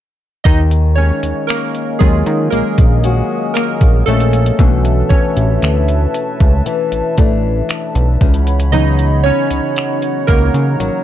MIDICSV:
0, 0, Header, 1, 6, 480
1, 0, Start_track
1, 0, Key_signature, -6, "minor"
1, 0, Tempo, 1034483
1, 210, Time_signature, 4, 2, 24, 8
1, 5121, End_track
2, 0, Start_track
2, 0, Title_t, "Analog synth pad"
2, 0, Program_c, 0, 89
2, 211, Note_on_c, 0, 77, 74
2, 212, Note_on_c, 0, 75, 71
2, 212, Note_on_c, 0, 80, 81
2, 212, Note_on_c, 0, 85, 85
2, 1161, Note_off_c, 0, 85, 0
2, 1168, Note_on_c, 0, 87, 90
2, 2112, Note_off_c, 0, 75, 0
2, 2112, Note_off_c, 0, 77, 0
2, 2112, Note_off_c, 0, 80, 0
2, 2120, Note_off_c, 0, 87, 0
2, 2132, Note_on_c, 0, 71, 83
2, 2132, Note_on_c, 0, 76, 71
2, 2132, Note_on_c, 0, 81, 75
2, 3794, Note_off_c, 0, 71, 0
2, 3794, Note_off_c, 0, 76, 0
2, 3794, Note_off_c, 0, 81, 0
2, 3811, Note_on_c, 0, 73, 77
2, 3811, Note_on_c, 0, 78, 72
2, 3811, Note_on_c, 0, 83, 73
2, 4761, Note_off_c, 0, 83, 0
2, 4772, Note_on_c, 0, 82, 73
2, 5121, Note_off_c, 0, 73, 0
2, 5121, Note_off_c, 0, 78, 0
2, 5121, Note_off_c, 0, 82, 0
2, 5121, End_track
3, 0, Start_track
3, 0, Title_t, "Synth keys"
3, 0, Program_c, 1, 88
3, 204, Note_on_c, 1, 75, 108
3, 215, Note_on_c, 1, 63, 82
3, 269, Note_off_c, 1, 75, 0
3, 280, Note_off_c, 1, 63, 0
3, 295, Control_c, 1, 64, 127
3, 443, Note_on_c, 1, 73, 91
3, 454, Note_on_c, 1, 61, 72
3, 675, Note_off_c, 1, 61, 0
3, 683, Note_on_c, 1, 70, 88
3, 694, Note_off_c, 1, 73, 0
3, 695, Note_on_c, 1, 58, 70
3, 748, Note_off_c, 1, 70, 0
3, 760, Note_off_c, 1, 58, 0
3, 923, Note_on_c, 1, 68, 84
3, 927, Note_on_c, 1, 54, 57
3, 930, Note_on_c, 1, 51, 53
3, 932, Note_on_c, 1, 61, 48
3, 933, Note_on_c, 1, 65, 61
3, 934, Note_on_c, 1, 56, 67
3, 1155, Note_off_c, 1, 56, 0
3, 1162, Note_on_c, 1, 70, 83
3, 1174, Note_off_c, 1, 68, 0
3, 1174, Note_on_c, 1, 58, 68
3, 1633, Note_off_c, 1, 58, 0
3, 1636, Note_off_c, 1, 70, 0
3, 1642, Note_on_c, 1, 70, 86
3, 1654, Note_on_c, 1, 58, 69
3, 1875, Note_off_c, 1, 58, 0
3, 1883, Note_on_c, 1, 69, 90
3, 1893, Note_off_c, 1, 70, 0
3, 1895, Note_on_c, 1, 57, 68
3, 2110, Note_off_c, 1, 54, 0
3, 2111, Note_off_c, 1, 51, 0
3, 2112, Note_off_c, 1, 61, 0
3, 2113, Note_off_c, 1, 65, 0
3, 2125, Note_off_c, 1, 57, 0
3, 2129, Note_on_c, 1, 52, 55
3, 2131, Note_on_c, 1, 57, 51
3, 2132, Note_on_c, 1, 61, 49
3, 2135, Note_on_c, 1, 62, 57
3, 2137, Control_c, 1, 64, 0
3, 2222, Control_c, 1, 64, 127
3, 2363, Note_on_c, 1, 73, 85
3, 2370, Note_off_c, 1, 61, 0
3, 2375, Note_on_c, 1, 61, 64
3, 2381, Note_off_c, 1, 69, 0
3, 2449, Note_off_c, 1, 52, 0
3, 2450, Note_off_c, 1, 57, 0
3, 2452, Note_off_c, 1, 62, 0
3, 3308, Note_off_c, 1, 73, 0
3, 3314, Note_off_c, 1, 61, 0
3, 3815, Control_c, 1, 64, 0
3, 3889, Control_c, 1, 64, 127
3, 4047, Note_on_c, 1, 75, 110
3, 4049, Note_on_c, 1, 52, 53
3, 4050, Note_on_c, 1, 54, 50
3, 4053, Note_on_c, 1, 59, 49
3, 4054, Note_on_c, 1, 63, 59
3, 4055, Note_off_c, 1, 63, 0
3, 4055, Note_on_c, 1, 63, 87
3, 4276, Note_off_c, 1, 63, 0
3, 4285, Note_on_c, 1, 73, 98
3, 4294, Note_on_c, 1, 61, 82
3, 4296, Note_off_c, 1, 75, 0
3, 4369, Note_off_c, 1, 52, 0
3, 4369, Note_off_c, 1, 54, 0
3, 4371, Note_off_c, 1, 59, 0
3, 4754, Note_off_c, 1, 61, 0
3, 4766, Note_on_c, 1, 70, 99
3, 4776, Note_on_c, 1, 58, 71
3, 4782, Note_off_c, 1, 73, 0
3, 5121, Note_off_c, 1, 58, 0
3, 5121, Note_off_c, 1, 70, 0
3, 5121, End_track
4, 0, Start_track
4, 0, Title_t, "Steel-string acoustic guitar"
4, 0, Program_c, 2, 25
4, 211, Note_on_c, 2, 51, 82
4, 451, Note_on_c, 2, 56, 60
4, 1165, Note_off_c, 2, 56, 0
4, 1171, Note_on_c, 2, 56, 65
4, 1405, Note_off_c, 2, 56, 0
4, 1410, Note_on_c, 2, 56, 59
4, 1413, Note_on_c, 2, 61, 62
4, 1416, Note_on_c, 2, 66, 65
4, 1888, Note_off_c, 2, 61, 0
4, 1890, Note_on_c, 2, 61, 56
4, 2130, Note_off_c, 2, 51, 0
4, 2130, Note_on_c, 2, 47, 82
4, 2178, Note_off_c, 2, 56, 0
4, 2369, Note_on_c, 2, 52, 60
4, 2383, Note_off_c, 2, 66, 0
4, 3088, Note_off_c, 2, 52, 0
4, 3089, Note_on_c, 2, 52, 66
4, 3328, Note_off_c, 2, 52, 0
4, 3330, Note_on_c, 2, 52, 62
4, 3334, Note_off_c, 2, 61, 0
4, 3334, Note_on_c, 2, 57, 61
4, 3336, Note_on_c, 2, 62, 65
4, 3808, Note_off_c, 2, 47, 0
4, 3810, Note_on_c, 2, 49, 79
4, 3860, Note_off_c, 2, 57, 0
4, 3861, Note_off_c, 2, 62, 0
4, 4043, Note_off_c, 2, 49, 0
4, 4049, Note_on_c, 2, 49, 78
4, 4288, Note_off_c, 2, 52, 0
4, 4290, Note_on_c, 2, 54, 59
4, 5004, Note_off_c, 2, 54, 0
4, 5010, Note_on_c, 2, 54, 66
4, 5121, Note_off_c, 2, 49, 0
4, 5121, Note_off_c, 2, 54, 0
4, 5121, End_track
5, 0, Start_track
5, 0, Title_t, "Analog synth bass"
5, 0, Program_c, 3, 38
5, 210, Note_on_c, 3, 39, 114
5, 518, Note_off_c, 3, 39, 0
5, 571, Note_on_c, 3, 39, 47
5, 619, Note_off_c, 3, 39, 0
5, 933, Note_on_c, 3, 39, 88
5, 1034, Note_off_c, 3, 39, 0
5, 1052, Note_on_c, 3, 51, 101
5, 1154, Note_off_c, 3, 51, 0
5, 1172, Note_on_c, 3, 34, 49
5, 1220, Note_off_c, 3, 34, 0
5, 1292, Note_on_c, 3, 34, 80
5, 1496, Note_off_c, 3, 34, 0
5, 1768, Note_on_c, 3, 34, 88
5, 1872, Note_off_c, 3, 34, 0
5, 1891, Note_on_c, 3, 34, 87
5, 2096, Note_off_c, 3, 34, 0
5, 2130, Note_on_c, 3, 35, 105
5, 2335, Note_off_c, 3, 35, 0
5, 2490, Note_on_c, 3, 33, 90
5, 2593, Note_off_c, 3, 33, 0
5, 2610, Note_on_c, 3, 38, 91
5, 2815, Note_off_c, 3, 38, 0
5, 2972, Note_on_c, 3, 37, 100
5, 3074, Note_off_c, 3, 37, 0
5, 3210, Note_on_c, 3, 33, 44
5, 3258, Note_off_c, 3, 33, 0
5, 3333, Note_on_c, 3, 33, 88
5, 3537, Note_off_c, 3, 33, 0
5, 3690, Note_on_c, 3, 35, 92
5, 3793, Note_off_c, 3, 35, 0
5, 3810, Note_on_c, 3, 37, 93
5, 4323, Note_off_c, 3, 37, 0
5, 4410, Note_on_c, 3, 37, 48
5, 4458, Note_off_c, 3, 37, 0
5, 4772, Note_on_c, 3, 37, 91
5, 4874, Note_off_c, 3, 37, 0
5, 4890, Note_on_c, 3, 49, 100
5, 4993, Note_off_c, 3, 49, 0
5, 5011, Note_on_c, 3, 32, 47
5, 5059, Note_off_c, 3, 32, 0
5, 5121, End_track
6, 0, Start_track
6, 0, Title_t, "Drums"
6, 210, Note_on_c, 9, 36, 107
6, 210, Note_on_c, 9, 42, 62
6, 256, Note_off_c, 9, 36, 0
6, 257, Note_off_c, 9, 42, 0
6, 330, Note_on_c, 9, 42, 46
6, 377, Note_off_c, 9, 42, 0
6, 571, Note_on_c, 9, 42, 56
6, 617, Note_off_c, 9, 42, 0
6, 690, Note_on_c, 9, 42, 64
6, 698, Note_on_c, 9, 26, 103
6, 737, Note_off_c, 9, 42, 0
6, 744, Note_off_c, 9, 26, 0
6, 810, Note_on_c, 9, 42, 44
6, 856, Note_off_c, 9, 42, 0
6, 930, Note_on_c, 9, 42, 62
6, 932, Note_on_c, 9, 36, 86
6, 977, Note_off_c, 9, 42, 0
6, 978, Note_off_c, 9, 36, 0
6, 1051, Note_on_c, 9, 42, 43
6, 1097, Note_off_c, 9, 42, 0
6, 1171, Note_on_c, 9, 42, 62
6, 1217, Note_off_c, 9, 42, 0
6, 1290, Note_on_c, 9, 42, 61
6, 1291, Note_on_c, 9, 36, 95
6, 1336, Note_off_c, 9, 42, 0
6, 1338, Note_off_c, 9, 36, 0
6, 1409, Note_on_c, 9, 42, 59
6, 1456, Note_off_c, 9, 42, 0
6, 1648, Note_on_c, 9, 42, 64
6, 1655, Note_on_c, 9, 26, 102
6, 1695, Note_off_c, 9, 42, 0
6, 1702, Note_off_c, 9, 26, 0
6, 1768, Note_on_c, 9, 36, 86
6, 1770, Note_on_c, 9, 42, 43
6, 1814, Note_off_c, 9, 36, 0
6, 1816, Note_off_c, 9, 42, 0
6, 1889, Note_on_c, 9, 42, 37
6, 1935, Note_off_c, 9, 42, 0
6, 1950, Note_on_c, 9, 42, 49
6, 1996, Note_off_c, 9, 42, 0
6, 2010, Note_on_c, 9, 42, 58
6, 2057, Note_off_c, 9, 42, 0
6, 2070, Note_on_c, 9, 42, 64
6, 2116, Note_off_c, 9, 42, 0
6, 2130, Note_on_c, 9, 36, 104
6, 2130, Note_on_c, 9, 42, 59
6, 2176, Note_off_c, 9, 36, 0
6, 2176, Note_off_c, 9, 42, 0
6, 2250, Note_on_c, 9, 42, 46
6, 2296, Note_off_c, 9, 42, 0
6, 2368, Note_on_c, 9, 36, 82
6, 2414, Note_off_c, 9, 36, 0
6, 2490, Note_on_c, 9, 42, 58
6, 2536, Note_off_c, 9, 42, 0
6, 2610, Note_on_c, 9, 42, 58
6, 2617, Note_on_c, 9, 26, 110
6, 2656, Note_off_c, 9, 42, 0
6, 2664, Note_off_c, 9, 26, 0
6, 2730, Note_on_c, 9, 42, 40
6, 2776, Note_off_c, 9, 42, 0
6, 2851, Note_on_c, 9, 42, 63
6, 2897, Note_off_c, 9, 42, 0
6, 2971, Note_on_c, 9, 42, 42
6, 2972, Note_on_c, 9, 36, 93
6, 3018, Note_off_c, 9, 36, 0
6, 3018, Note_off_c, 9, 42, 0
6, 3091, Note_on_c, 9, 42, 67
6, 3137, Note_off_c, 9, 42, 0
6, 3211, Note_on_c, 9, 42, 58
6, 3257, Note_off_c, 9, 42, 0
6, 3330, Note_on_c, 9, 42, 57
6, 3332, Note_on_c, 9, 36, 101
6, 3376, Note_off_c, 9, 42, 0
6, 3378, Note_off_c, 9, 36, 0
6, 3569, Note_on_c, 9, 42, 65
6, 3576, Note_on_c, 9, 26, 104
6, 3615, Note_off_c, 9, 42, 0
6, 3622, Note_off_c, 9, 26, 0
6, 3690, Note_on_c, 9, 42, 40
6, 3737, Note_off_c, 9, 42, 0
6, 3809, Note_on_c, 9, 42, 39
6, 3810, Note_on_c, 9, 36, 93
6, 3856, Note_off_c, 9, 36, 0
6, 3856, Note_off_c, 9, 42, 0
6, 3869, Note_on_c, 9, 42, 49
6, 3915, Note_off_c, 9, 42, 0
6, 3929, Note_on_c, 9, 42, 57
6, 3976, Note_off_c, 9, 42, 0
6, 3989, Note_on_c, 9, 42, 65
6, 4035, Note_off_c, 9, 42, 0
6, 4050, Note_on_c, 9, 42, 61
6, 4096, Note_off_c, 9, 42, 0
6, 4170, Note_on_c, 9, 42, 47
6, 4216, Note_off_c, 9, 42, 0
6, 4411, Note_on_c, 9, 42, 59
6, 4457, Note_off_c, 9, 42, 0
6, 4530, Note_on_c, 9, 42, 61
6, 4538, Note_on_c, 9, 26, 100
6, 4577, Note_off_c, 9, 42, 0
6, 4584, Note_off_c, 9, 26, 0
6, 4650, Note_on_c, 9, 42, 40
6, 4696, Note_off_c, 9, 42, 0
6, 4771, Note_on_c, 9, 42, 65
6, 4772, Note_on_c, 9, 36, 86
6, 4817, Note_off_c, 9, 42, 0
6, 4818, Note_off_c, 9, 36, 0
6, 4892, Note_on_c, 9, 42, 46
6, 4938, Note_off_c, 9, 42, 0
6, 5012, Note_on_c, 9, 42, 61
6, 5059, Note_off_c, 9, 42, 0
6, 5121, End_track
0, 0, End_of_file